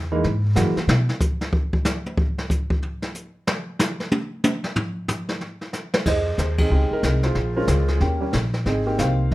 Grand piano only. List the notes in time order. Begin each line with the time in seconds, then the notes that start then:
0.12 E3 G#3 A#3 D#4
0.55 E3 G#3 A#3 F#4
6.07 G#4 C5 D#5
6.40 C5
6.60 C4 D#4 G#4
6.71 G#3 C4 D#4 G4
6.93 D#4 A#4
7.24 F4 G#4 C5
7.56 G#3 C#4 F4 A#4 C5
7.89 G#4
8.01 A#3 C#4 G4
8.21 G3 A#3 C#4 G4
8.67 C4 D#4 G#4
8.86 A#3 C4 D#4 G4
8.99 C5 F5